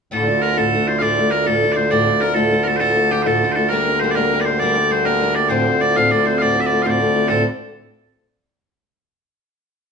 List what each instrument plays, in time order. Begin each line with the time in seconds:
0.11 steel-string acoustic guitar D2 A2 D3 A3 D4 F4, bagpipes D2 D3 A4
0.27 steel-string acoustic guitar D3 A3 D4 F4
0.41 steel-string acoustic guitar D3 A3 D4 F4, bagpipes A#4
0.57 steel-string acoustic guitar D2 A2 D3 A3 D4 F4, bagpipes A4
0.73 steel-string acoustic guitar D3 A3 D4 F4
0.87 steel-string acoustic guitar D3 A3 D4 F4, bagpipes C5
0.98 steel-string acoustic guitar D2 A2 D3 A3 D4, bagpipes D5 F5
1.02 steel-string acoustic guitar F4
1.18 steel-string acoustic guitar D3 A3 D4 F4
1.31 steel-string acoustic guitar A3 D4 F4, bagpipes A#4
1.46 steel-string acoustic guitar D2 A2 D3 A3 D4 F4, bagpipes A4
1.62 steel-string acoustic guitar D3 A3 D4 F4
1.72 steel-string acoustic guitar F4, bagpipes C5 D5
1.78 steel-string acoustic guitar D3 A3 D4
1.91 steel-string acoustic guitar D2 A2 D3 A3 D4 F4, bagpipes D5
2.06 steel-string acoustic guitar D3 A3 D4 F4
2.21 steel-string acoustic guitar D3 A3 D4 F4, bagpipes A#4
2.34 steel-string acoustic guitar D2 A2 D3 A3 D4 F4, bagpipes A4
2.50 steel-string acoustic guitar D3 A3 D4 F4
2.63 steel-string acoustic guitar D4 F4, bagpipes A#4
2.67 steel-string acoustic guitar D3 A3, bagpipes A4
2.76 steel-string acoustic guitar D2, bagpipes A4 C5
2.80 steel-string acoustic guitar A2 D3 A3 D4 F4
2.95 steel-string acoustic guitar D3 A3 D4 F4
3.11 steel-string acoustic guitar D3 A3 D4 F4, bagpipes G4
3.22 steel-string acoustic guitar A2 D3 A3 D4 F4, bagpipes C5
3.27 steel-string acoustic guitar D2, bagpipes A4
3.43 steel-string acoustic guitar D3 A3 D4 F4
3.52 bagpipes A4 C5
3.56 steel-string acoustic guitar D3 A3 D4 F4
3.69 steel-string acoustic guitar G3 A#3 D4 G4, bagpipes A#4
3.87 steel-string acoustic guitar A#3 D4 G4
4.00 steel-string acoustic guitar G3 A#3 D4 G4, bagpipes C5
4.11 bagpipes D5
4.15 steel-string acoustic guitar G3 A#3 D4 G4, bagpipes A#4
4.32 steel-string acoustic guitar G3 A#3 D4 G4
4.41 bagpipes D5
4.45 steel-string acoustic guitar A#3 D4 G4, bagpipes C5
4.59 steel-string acoustic guitar G3 A#3 D4 G4, bagpipes D5
4.76 steel-string acoustic guitar A#3 D4 G4
4.91 steel-string acoustic guitar G3 A#3 D4 G4, bagpipes C5
5.05 steel-string acoustic guitar G3 A#3 D4 G4, bagpipes A#4
5.21 steel-string acoustic guitar G3 A#3 D4 G4
5.35 steel-string acoustic guitar A#3 D4 G4, bagpipes D5
5.49 steel-string acoustic guitar D2 A2 D3 A3 C4 F4, bagpipes C5
5.65 steel-string acoustic guitar D3 A3 C4 F4
5.81 steel-string acoustic guitar D3 A3 C4 F4, bagpipes D5
5.96 steel-string acoustic guitar D2 A2 D3 A3 C4 F4, bagpipes F5
6.11 steel-string acoustic guitar D3 A3 C4 F4, bagpipes D5
6.26 steel-string acoustic guitar D3 A3 C4 F4, bagpipes C5
6.38 steel-string acoustic guitar D2 A2 D3, bagpipes D5 F5
6.42 steel-string acoustic guitar A3 C4 F4
6.56 steel-string acoustic guitar D3 A3 C4 F4
6.60 bagpipes E5
6.66 bagpipes D5
6.70 steel-string acoustic guitar D3 A3 C4 F4
6.82 steel-string acoustic guitar D3 A3 C4 F4, bagpipes C5 F5
6.86 steel-string acoustic guitar D2 A2, bagpipes D5
7.00 steel-string acoustic guitar D3 A3 C4 F4
7.15 steel-string acoustic guitar D3 A3 C4 F4
7.28 steel-string acoustic guitar D2 A2 D3 A3 C4 F4, bagpipes A4